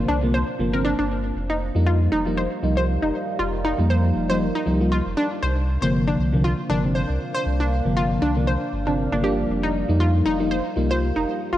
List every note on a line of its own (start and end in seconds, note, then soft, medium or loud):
0.00 0.19 C3 medium
0.00 0.19 D3 medium
0.00 0.19 F3 medium
0.00 0.20 A#3 loud
0.00 1.32 A#3 medium
0.00 1.32 D4 medium
0.00 1.32 C5 medium
0.00 1.32 F5 medium
0.08 0.44 C2 medium
0.08 0.20 D4 loud
0.22 0.39 C3 medium
0.22 0.39 D3 medium
0.22 0.39 F3 medium
0.22 0.40 A#3 loud
0.34 0.46 C5 medium
0.59 0.94 G1 medium
0.59 0.71 C3 medium
0.59 0.71 D3 medium
0.59 0.72 F3 medium
0.59 0.72 A#3 loud
0.73 0.90 C3 medium
0.73 0.90 D3 medium
0.73 0.90 F3 medium
0.73 0.90 C4 medium
0.73 0.80 A#4 medium
0.85 0.93 D4 loud
0.99 1.32 G1 medium
0.99 1.05 D4 medium
1.36 1.71 F1 loud
1.36 5.13 G3 medium
1.36 5.13 D#4 medium
1.36 5.13 A#4 medium
1.36 11.58 F5 medium
1.50 1.56 D#4 medium
1.75 2.08 F2 loud
1.75 2.22 F3 medium
1.75 2.23 G3 medium
1.75 2.23 A#3 medium
1.75 2.23 D#4 medium
1.87 1.98 F4 medium
2.12 2.47 F1 medium
2.12 2.23 D#4 loud
2.26 2.42 F3 medium
2.26 2.43 G3 medium
2.26 2.43 A#3 medium
2.26 2.43 D#4 loud
2.37 2.49 C5 medium
2.62 2.98 C2 medium
2.62 2.75 F3 medium
2.62 2.75 G3 medium
2.62 2.75 A#3 medium
2.62 2.75 D#4 medium
2.77 2.93 F3 medium
2.77 2.93 G3 medium
2.77 2.94 A#3 medium
2.77 2.94 F4 medium
2.77 2.83 C5 loud
3.02 3.11 F1 medium
3.02 3.08 D#4 medium
3.39 3.74 F1 loud
3.39 3.51 F4 medium
3.64 3.76 D#4 loud
3.78 4.12 F2 loud
3.78 4.26 F3 medium
3.78 4.26 G3 medium
3.78 4.26 A#3 medium
3.78 4.26 D#4 loud
3.90 4.01 C5 medium
4.15 4.50 F1 medium
4.29 4.46 F3 medium
4.29 4.46 G3 medium
4.29 4.46 A#3 medium
4.29 4.46 D#4 medium
4.29 4.36 C5 loud
4.55 4.61 D#4 medium
4.66 5.01 C2 medium
4.66 4.78 F3 medium
4.66 4.78 G3 medium
4.66 4.78 A#3 medium
4.66 4.79 D#4 loud
4.80 4.97 F3 medium
4.80 4.97 G3 medium
4.80 4.97 A#3 medium
4.80 4.97 F4 medium
4.92 5.03 F4 medium
5.06 5.15 F1 medium
5.17 9.45 A#3 medium
5.17 5.29 D4 loud
5.17 9.45 D4 medium
5.17 7.18 C5 medium
5.42 5.77 C2 loud
5.42 5.54 C5 medium
5.82 6.15 G1 loud
5.82 6.29 C3 medium
5.82 6.29 D3 medium
5.82 6.30 F3 medium
5.82 6.30 A#3 medium
5.82 5.88 C5 loud
6.07 6.14 D4 medium
6.19 6.54 C2 medium
6.33 6.49 C3 medium
6.33 6.49 D3 medium
6.33 6.50 F3 medium
6.33 6.50 A#3 loud
6.44 6.56 F4 medium
6.69 7.05 G1 medium
6.69 6.81 C3 medium
6.69 6.82 D3 medium
6.69 6.82 F3 medium
6.69 6.82 A#3 loud
6.69 6.81 D4 loud
6.83 7.00 C3 medium
6.83 7.00 D3 medium
6.83 7.00 F3 medium
6.83 7.01 C4 medium
6.95 7.07 C5 medium
7.09 7.18 C2 medium
7.21 9.47 D5 medium
7.34 7.41 C5 loud
7.46 7.81 C2 loud
7.60 7.66 D4 medium
7.85 8.18 G1 loud
7.85 8.33 C3 medium
7.85 8.33 D3 medium
7.85 8.33 F3 medium
7.85 8.33 A#3 medium
7.97 8.08 F4 medium
8.22 8.57 C2 medium
8.22 8.34 D4 loud
8.36 8.53 C3 medium
8.36 8.53 D3 medium
8.36 8.53 F3 medium
8.36 8.53 A#3 loud
8.48 8.59 C5 medium
8.73 9.08 G1 medium
8.87 9.08 C3 medium
8.87 9.08 D3 medium
8.87 9.08 F3 medium
8.87 9.09 C4 medium
8.87 8.91 D4 medium
9.12 9.46 G1 medium
9.12 9.22 C3 medium
9.12 9.22 D3 medium
9.12 9.22 F3 medium
9.12 9.22 A#3 medium
9.12 9.22 D4 medium
9.23 9.85 F3 medium
9.23 9.85 G3 medium
9.23 9.86 A#3 medium
9.23 9.86 D4 loud
9.23 9.28 G4 medium
9.49 9.84 F1 loud
9.49 11.58 G3 medium
9.49 11.58 F4 medium
9.49 11.58 A#4 medium
9.63 9.70 D#4 medium
9.88 10.22 F2 loud
9.88 10.36 F3 medium
9.88 10.36 G3 medium
9.88 10.36 A#3 medium
9.88 10.37 D#4 loud
10.00 10.12 F4 medium
10.25 10.60 F1 medium
10.25 10.37 D#4 loud
10.39 10.56 F3 medium
10.39 10.56 G3 medium
10.39 10.56 A#3 medium
10.39 10.57 D#4 loud
10.51 10.63 C5 medium
10.76 11.11 C2 medium
10.76 10.88 F3 medium
10.76 10.88 G3 medium
10.76 10.89 A#3 medium
10.76 10.89 D#4 loud
10.90 11.07 F3 medium
10.90 11.07 G3 medium
10.90 11.07 A#3 medium
10.90 11.07 F4 medium
10.90 10.97 C5 loud
11.16 11.25 F1 medium
11.16 11.22 D#4 medium
11.53 11.58 F1 loud
11.53 11.58 F4 medium